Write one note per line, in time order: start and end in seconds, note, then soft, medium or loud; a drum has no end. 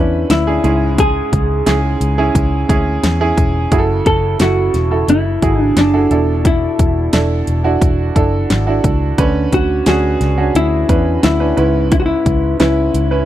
0.00 0.24 E2 medium
0.00 0.66 D3 medium
0.00 0.47 C#4 medium
0.00 0.47 D4 medium
0.00 0.30 E4 medium
0.00 0.67 B4 medium
0.30 0.58 D2 medium
0.30 1.01 E4 medium
0.30 snare medium
0.30 clap medium
0.30 closed hi-hat medium
0.47 0.62 C#4 medium
0.47 0.64 D4 medium
0.47 0.62 G#4 medium
0.64 1.20 C#2 medium
0.64 1.62 G#2 medium
0.64 1.47 C#4 medium
0.64 1.47 E4 medium
0.64 1.47 G#4 medium
0.64 closed hi-hat medium
0.98 3.34 G#4 medium
0.98 kick medium
0.98 closed hi-hat medium
1.33 1.61 C#2 medium
1.33 kick medium
1.33 closed hi-hat medium
1.66 1.95 C#2 medium
1.66 2.08 C#4 medium
1.66 2.08 E4 medium
1.66 2.08 G#4 medium
1.66 snare medium
1.66 clap medium
1.66 closed hi-hat medium
2.01 2.29 C#2 medium
2.01 closed hi-hat medium
2.18 2.59 C#4 medium
2.18 2.59 E4 medium
2.18 2.59 G#4 medium
2.35 2.63 C#2 medium
2.35 kick medium
2.35 closed hi-hat medium
2.69 2.97 D2 medium
2.69 3.11 C#4 medium
2.69 3.11 E4 medium
2.69 3.11 G#4 medium
2.69 kick medium
2.69 closed hi-hat medium
3.03 3.31 E2 medium
3.03 snare medium
3.03 clap medium
3.03 closed hi-hat medium
3.21 3.62 C#4 medium
3.21 3.62 E4 medium
3.21 3.62 G#4 medium
3.37 3.65 E1 medium
3.37 kick medium
3.37 closed hi-hat medium
3.72 4.00 F#1 medium
3.72 4.70 C#3 medium
3.72 4.27 E4 medium
3.72 4.27 F#4 medium
3.72 3.78 G#4 medium
3.72 kick medium
3.72 closed hi-hat medium
3.78 4.30 A4 medium
4.06 4.34 F#1 medium
4.06 4.38 A4 medium
4.06 kick medium
4.06 closed hi-hat medium
4.40 4.68 F#1 medium
4.40 4.81 E4 medium
4.40 4.81 F#4 medium
4.40 5.11 F#4 medium
4.40 4.81 A4 medium
4.40 snare medium
4.40 clap medium
4.40 closed hi-hat medium
4.74 5.02 E1 medium
4.74 snare soft
4.74 closed hi-hat medium
4.91 5.33 E4 medium
4.91 5.33 F#4 medium
4.91 5.33 A4 medium
5.08 5.36 F#1 medium
5.08 5.62 E4 medium
5.08 closed hi-hat medium
5.42 5.70 G#1 medium
5.42 5.84 E4 medium
5.42 5.84 F#4 medium
5.42 5.84 G#4 medium
5.42 kick medium
5.42 closed hi-hat medium
5.62 5.78 D4 medium
5.77 6.05 F#1 medium
5.77 6.46 D4 medium
5.77 snare medium
5.77 clap medium
5.77 closed hi-hat medium
5.94 6.09 E4 medium
5.94 6.11 F#4 medium
5.94 6.09 A4 medium
6.11 6.67 E1 medium
6.11 7.09 B2 medium
6.11 6.94 D4 medium
6.11 6.94 E4 medium
6.11 6.94 A4 medium
6.11 closed hi-hat medium
6.45 7.10 E4 medium
6.45 kick medium
6.45 closed hi-hat medium
6.79 7.07 E1 medium
6.79 kick medium
6.79 closed hi-hat medium
7.13 7.41 E1 medium
7.13 7.54 D4 medium
7.13 7.54 E4 medium
7.13 7.55 A4 medium
7.13 snare medium
7.13 clap medium
7.13 closed hi-hat medium
7.47 7.76 E1 medium
7.47 closed hi-hat medium
7.64 8.06 D4 medium
7.64 8.06 E4 medium
7.64 8.06 F#4 medium
7.81 8.10 E1 medium
7.81 kick medium
7.81 closed hi-hat medium
8.15 8.44 F#1 medium
8.15 8.57 D4 medium
8.15 8.57 E4 medium
8.15 8.57 A4 medium
8.15 kick medium
8.15 closed hi-hat medium
8.50 8.78 G#1 medium
8.50 snare medium
8.50 clap medium
8.50 closed hi-hat medium
8.67 9.08 D4 medium
8.67 9.08 E4 medium
8.67 9.08 F#4 medium
8.84 9.12 C#2 medium
8.84 kick medium
8.84 closed hi-hat medium
9.18 9.46 D2 medium
9.18 10.17 D3 medium
9.18 9.74 C#4 medium
9.18 9.74 D4 medium
9.18 9.74 B4 medium
9.18 kick loud
9.18 closed hi-hat medium
9.53 9.81 D2 medium
9.53 9.85 F#4 medium
9.53 kick medium
9.53 closed hi-hat medium
9.86 10.15 D2 medium
9.86 10.28 C#4 medium
9.86 10.28 D4 medium
9.86 10.56 F#4 medium
9.86 10.28 G#4 medium
9.86 snare medium
9.86 clap medium
9.86 closed hi-hat medium
10.21 10.49 C#2 medium
10.21 snare soft
10.21 closed hi-hat medium
10.38 10.79 C#4 medium
10.38 10.79 D4 medium
10.38 10.79 F#4 medium
10.55 10.83 D2 medium
10.55 11.23 E4 medium
10.55 closed hi-hat medium
10.89 11.17 E2 medium
10.89 11.30 C#4 medium
10.89 11.30 D4 medium
10.89 11.30 B4 medium
10.89 kick medium
10.89 closed hi-hat medium
11.23 11.51 D2 medium
11.23 11.91 E4 medium
11.23 snare medium
11.23 clap medium
11.23 closed hi-hat medium
11.40 11.55 C#4 medium
11.40 11.57 D4 medium
11.40 11.56 B4 medium
11.57 12.14 C#2 medium
11.57 12.56 G#2 medium
11.57 12.40 C#4 medium
11.57 12.40 E4 medium
11.57 12.40 B4 medium
11.57 closed hi-hat medium
11.92 11.99 E4 medium
11.92 kick medium
11.92 closed hi-hat medium
12.00 12.05 F#4 medium
12.06 12.56 E4 medium
12.26 12.54 C#2 medium
12.26 kick medium
12.26 closed hi-hat medium
12.59 12.88 C#2 medium
12.59 13.01 C#4 medium
12.59 13.01 E4 medium
12.59 13.25 E4 medium
12.59 13.01 B4 medium
12.59 snare medium
12.59 clap medium
12.59 closed hi-hat medium
12.94 13.22 C#2 medium
12.94 closed hi-hat medium
13.11 13.25 C#4 medium
13.11 13.25 E4 medium
13.11 13.25 B4 medium